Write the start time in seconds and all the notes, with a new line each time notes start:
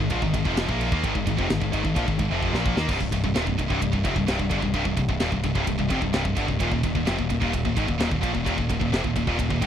Already playing: G#2 G#3 D#4 D#5
0.00 G#2 D#3
0.10 A#1 A#2 F3, kick, ride
0.22 G#1 G#2 D#3, kick
0.34 G#1 G#2 D#3, kick, ride
0.45 F1 F2 C3 F3, kick
0.57 snare, ride
0.69 A#1 A#2 F3 A#3, kick
0.81 ride
0.92 D#2 D#3 A#3, kick
1.04 G#1 G#2 D#3, kick, ride
1.15 G#1 G#2 D#3, kick
1.27 G#1 G#2 D#3, kick, ride
1.39 F1 F2 C3, kick
1.50 G#1 G#2 D#3, snare, ride
1.61 G#1 G#2 D#3, kick
1.73 G#1 G#2 D#3, kick, ride
1.85 G#1 G#2 D#3, kick
1.96 A#1 A#2 F3, kick, ride
2.08 G#1 G#2 D#3, kick
2.19 G#1 G#2 D#3, kick, ride
2.30 F1 F2 C3 F3
2.42 kick
2.53 A#1 A#2 F3 A#3, snare
2.66 kick
2.76 D#2 D#3 A#3, snare
2.88 C1 C2 G2, kick, crash
3.00 C1 C2 G2, kick
3.12 C1 C2 G2, kick, ride
3.24 C1 C2 G2, kick
3.35 D#1 D#2 A#2, snare, ride
3.47 C1 C2 G2, kick
3.58 C1 C2 G2, kick, ride
3.70 C1 C2 G2, kick
3.82 C1 C2 G2, kick, ride
3.93 C1 C2 G2, kick
4.05 F1 F2 C3, kick, ride
4.16 C1 C2 G2, kick
4.28 C1 C2 G2, snare, ride
4.39 C1 C2 G2, kick
4.51 G1 G2 D3, kick, ride
4.62 C1 C2 G2, kick
4.74 C1 C2 G2, kick, ride
4.85 C1 C2 G2, kick
4.97 C1 C2 G2, kick, ride
5.08 C1 C2 G2, kick
5.20 D#1 D#2 A#2, snare, ride
5.32 C1 C2 G2, kick
5.44 C1 C2 G2, kick, ride
5.55 C1 C2 G2, kick
5.67 C1 C2 G2, kick, ride
5.79 C1 C2 G2, kick
5.90 F1 F2 C3, kick, ride
6.02 C1 C2 G2, kick
6.13 C1 C2 G2, snare, ride
6.25 C1 C2 G2, kick
6.37 G1 G2 D3, kick, ride
6.48 C1 C2 G2, kick
6.60 D#1 D#2 A#2, kick, ride
6.71 D#1 D#2 A#2, kick
6.83 D#1 D#2 A#2, kick, ride
6.95 D#1 D#2 A#2, kick
7.06 F1 F2 C3, snare, ride
7.17 D#1 D#2 A#2, kick
7.29 D#1 D#2 A#2, kick, ride
7.41 D#1 D#2 A#2, kick
7.53 D#1 D#2 A#2, kick, ride
7.65 D#1 D#2 A#2, kick
7.77 G#1 G#2 D#3, kick, ride
7.87 D#1 D#2 A#2, kick
7.99 D#1 D#2 A#2, snare, ride
8.11 D#1 D#2 A#2, kick
8.22 A#1 A#2 F3, kick, ride
8.34 D#1 D#2 A#2, kick
8.45 D#1 D#2 A#2, kick, ride
8.58 D#1 D#2 A#2, kick
8.69 D#1 D#2 A#2, kick, ride
8.80 D#1 D#2 A#2, kick
8.92 F1 F2 C3, snare, ride
9.04 D#1 D#2 A#2, kick
9.16 D#1 D#2 A#2, kick, ride
9.27 D#1 D#2 A#2, kick
9.39 D#1 D#2 A#2, kick, ride
9.50 D#1 D#2 A#2, kick
9.62 G#1 G#2 D#3, kick, ride